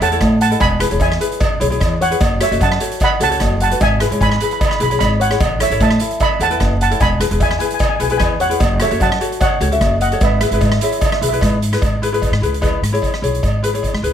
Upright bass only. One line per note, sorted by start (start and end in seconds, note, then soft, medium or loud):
0.01 0.17 E2 medium
0.21 0.52 A2 medium
0.60 0.85 E1 medium
0.92 0.99 E1 medium
1.01 1.17 E2 loud
1.61 1.77 B1 medium
1.81 2.12 E2 loud
2.20 2.45 F#1 loud
2.52 2.59 F#1 medium
2.61 2.77 F#2 medium
3.20 3.36 C#2 medium
3.41 3.72 F#1 loud
3.81 4.05 G#1 loud
4.11 4.19 G#1 medium
4.21 4.36 G#2 loud
4.81 4.97 B1 medium
5.01 5.32 G#1 loud
5.41 5.65 A1 medium
5.70 5.78 A1 medium
5.80 5.96 A2 loud
6.40 6.56 E2 medium
6.61 6.92 F#1 loud
7.00 7.25 E1 loud
7.31 7.39 E1 medium
7.41 7.57 E2 medium
8.00 8.16 B1 medium
8.20 8.52 E2 loud
8.60 8.85 F#1 loud
8.91 8.99 F#1 medium
9.01 9.17 F#2 loud
9.60 9.77 C#2 medium
9.81 10.13 F#1 loud
10.21 10.46 G#1 medium
10.51 10.59 G#1 medium
10.61 10.77 G#2 loud
11.21 11.37 B1 medium
11.42 11.74 G#2 medium
11.82 12.22 G#2 medium
12.32 12.39 G#2 medium
12.41 12.74 C#2 medium
12.82 12.98 G#2 medium
13.22 13.38 B1 medium
13.43 13.84 G#2 medium
13.94 14.01 G#2 medium
14.02 14.13 C#2 medium